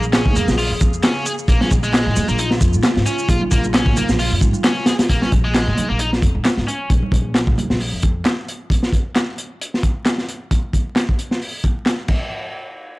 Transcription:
Already playing: A#1 C#3 A#3 G#4
0.03 shaker
0.13 C#4, snare, clap, closed hi-hat, shaker
0.26 A#2, kick, low conga
0.35 F2 A#3, closed hi-hat, high conga, low conga, shaker
0.48 A#1, snare, shaker
0.58 F4, open hi-hat, shaker
0.70 F2
0.81 kick, closed hi-hat, shaker
0.93 shaker
1.03 C#4, snare, clap, closed hi-hat, shaker
1.26 G#4, closed hi-hat, shaker
1.39 shaker
1.48 A#1 A#3 F4, kick, closed hi-hat, shaker
1.61 C#4, snare, high conga
1.71 A#1, kick, closed hi-hat, shaker
1.83 G#3, shaker
1.94 snare, clap, closed hi-hat, shaker
2.06 A#2, low conga
2.16 F2, closed hi-hat, high conga, low conga, shaker
2.28 A#1 A#3, shaker
2.39 D#4, closed hi-hat, shaker
2.51 snare
2.61 F2, kick, closed hi-hat, shaker
2.73 A#2, shaker
2.83 snare, clap, closed hi-hat, shaker
2.97 G#2, snare
3.06 C#4, closed hi-hat, shaker
3.19 shaker
3.29 A#1 F4, kick, closed hi-hat, shaker
3.41 high conga
3.51 A#1 A#3, kick, closed hi-hat, shaker
3.64 high conga, shaker
3.74 C#4, snare, clap, closed hi-hat, shaker
3.86 A#2, kick, low conga
3.97 F2 A#3, closed hi-hat, high conga, low conga, shaker
4.09 A#1, snare, shaker
4.19 F4, open hi-hat, shaker
4.32 F2
4.41 G#2, kick, closed hi-hat, shaker
4.53 high conga, shaker
4.64 C#4, snare, clap, closed hi-hat, shaker
4.86 G#4, snare, closed hi-hat, shaker
4.99 snare, closed hi-hat, shaker
5.09 A#1 A#3, kick, closed hi-hat
5.22 C#4, snare, high conga
5.32 A#1, kick, closed hi-hat
5.44 G#3
5.54 snare, clap, closed hi-hat
5.67 A#2, low conga
5.77 F2, closed hi-hat, high conga, low conga
5.90 A#1 A#3
5.99 D#4, closed hi-hat
6.13 snare
6.22 F2, kick, closed hi-hat
6.35 A#2
6.45 snare, clap, closed hi-hat
6.57 G#2, snare
6.68 C#4, closed hi-hat
6.90 A#1, kick, closed hi-hat
7.02 high conga
7.12 A#1, kick, closed hi-hat
7.35 snare, clap, closed hi-hat
7.47 A#2, kick, low conga
7.58 F2, closed hi-hat, high conga, low conga
7.70 A#1, snare
7.80 open hi-hat
7.93 F2
8.02 kick, closed hi-hat
8.25 snare, clap, closed hi-hat
8.48 closed hi-hat
8.70 kick, closed hi-hat
8.83 snare
8.92 kick, closed hi-hat
9.16 snare, clap, closed hi-hat
9.38 closed hi-hat
9.61 closed hi-hat
9.74 snare
9.83 kick, closed hi-hat
10.06 snare, clap, closed hi-hat
10.18 snare
10.29 closed hi-hat
10.51 kick, closed hi-hat
10.73 kick, closed hi-hat
10.96 snare, clap, closed hi-hat
11.09 kick
11.19 closed hi-hat
11.31 snare
11.42 open hi-hat
11.64 kick, closed hi-hat
11.86 snare, clap, closed hi-hat
12.08 kick, crash

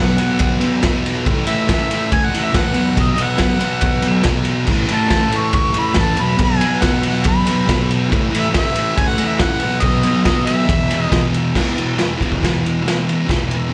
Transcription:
Already playing: B2 F#5
0.00 F#3 B3
0.17 B3, ride
0.21 F#3
0.39 kick, ride
0.59 B3, ride
0.64 F#3
0.82 B2 F#3, kick, snare, ride
0.87 B3
1.06 ride
1.26 A2 E3 A3, kick, ride
1.46 A3 E5, ride
1.52 E3
1.67 A2 E5, kick, snare, ride
1.72 E3 A3
1.90 A3, ride
1.95 E3
2.12 G#5, kick, ride
2.26 F#5
2.30 A3
2.34 E3, ride
2.45 E5
2.52 A2 E3 F#5, kick, snare, ride
2.58 A3
2.73 F#3 B3, ride
2.77 B2
2.93 B2 F#3, kick, ride
2.98 B3 D#5
3.15 B3 D#5, ride
3.19 F#3 F#5
3.37 B2 F#3, kick, snare, ride
3.42 B3
3.59 B3, ride
3.63 F#3
3.81 kick, ride
4.02 B3, ride
4.07 F#3
4.24 B2 F#3, kick, snare, ride
4.29 B3
4.45 ride
4.66 A2 E3, kick, crash
4.72 A3
4.87 A3, ride
4.93 E3 A5
5.09 A2 E3, kick, snare, ride
5.15 A3
5.29 A3, ride
5.34 E3 C#6
5.53 C#6, kick, ride
5.73 A3, ride
5.77 E3 B5
5.94 A2 E3, kick, snare, ride
6.00 A3 A5
6.17 F#3 B3, ride
6.21 B2 B5
6.37 B2 F#3, kick, ride
6.42 B3 G#5
6.59 B3, ride
6.65 F#3
6.81 B2 F#3 F#5, kick, snare, ride
6.87 B3
7.03 B3, ride
7.08 F#3 F#5
7.24 B5, kick, ride
7.46 B3, ride
7.51 F#3
7.66 B2 F#3, kick, snare, ride
7.71 B3
7.91 ride
8.09 A2 E3, kick, ride
8.15 A3
8.31 A3, ride
8.36 E3 E5
8.50 A2 E3
8.54 A3, kick, snare, ride
8.58 E5
8.72 A3, ride
8.78 E3
8.98 G#5, kick, ride
9.08 F#5
9.18 A3, ride
9.24 E3
9.29 E5
9.39 A2 F#5, kick, snare, ride
9.43 E3 A3
9.60 B3, ride
9.64 B2 F#3
9.80 B2 D#5, kick, ride
9.85 F#3 B3
10.03 B3, ride
10.10 F#3
10.25 B2 F#3 D#5, kick, snare, ride
10.30 B3
10.46 B3 E5, ride
10.50 F#3
10.66 E2 B2, kick, ride
10.70 E3
10.89 E3, ride
10.94 B2
11.03 D#5
11.09 E2 B2, kick, snare, ride
11.14 E3
11.34 ride
11.53 E2 B2, kick, snare, crash
11.58 E3
11.75 B2 E3, ride
11.96 E2 B2, snare, ride
12.00 E3
12.17 B2 E3, kick
12.22 E2, ride
12.32 kick
12.39 E2 B2
12.43 E3, kick, snare, ride
12.60 E3
12.65 B2, ride
12.83 E2 B2
12.88 E3, snare, ride
13.04 E3
13.09 B2, ride
13.25 E2 B2
13.29 E3, kick, snare, ride
13.47 E3, ride
13.53 B2
13.69 E2

